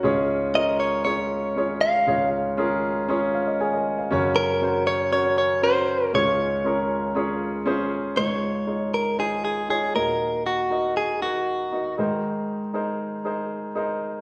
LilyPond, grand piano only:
<<
  \new Staff \with { instrumentName = "Grand piano" } { \time 4/4 \key des \major \tempo 4 = 118 << { r1 | r2 r8 <c'' f''>16 <bes' ees''>16 <aes' des'' aes''>16 <bes' ees''>8 <c'' f''>16~ | <c'' f''>16 r2. r8. | r1 |
r1 | r1 | r1 | } \\ { <des' f' aes' des''>4 <des' f' aes' bes'>4 <des' f' aes' des''>4 <des' f' aes' des''>4 | <des' f' aes' des''>4 <des' f' aes' bes'>4 <des' f' aes' des''>4 r4 | <des' ges' bes' des''>4 <des' ges' bes' c''>4 <des' ges' bes' des''>4 <des' ges' bes' c''>4 | <des' f' aes' des''>4 <des' f' aes' bes'>4 <des' f' aes' des''>4 <des' f' aes' c''>4 |
<ees' f' aes' des''>4 <ees' f' aes' des''>4 <ees' f' aes' c''>4 <ees' f' aes' des''>8 <ees' ges' bes' ees''>8~ | <ees' ges' bes' ees''>8 r8 <ees' ges' bes' ees''>4 <ees' ges' bes' ges''>4 <ees' ges' bes' ees''>8 <ees' aes' bes' c''>8~ | <ees' aes' bes' c''>8 r8 <ees' aes' bes' c''>4 <ees' aes' bes' c''>4 <ees' aes' bes' c''>4 | } >> }
  \new Staff \with { instrumentName = "Grand piano" } { \clef bass \time 4/4 \key des \major <des, aes,>1 | <des, aes,>1 | <ges, des>1 | <des, aes,>1 |
<des, aes,>2.~ <des, aes,>8 <ees, bes,>8~ | <ees, bes,>2.~ <ees, bes,>8 <aes, ees>8~ | <aes, ees>2.~ <aes, ees>8 r8 | }
>>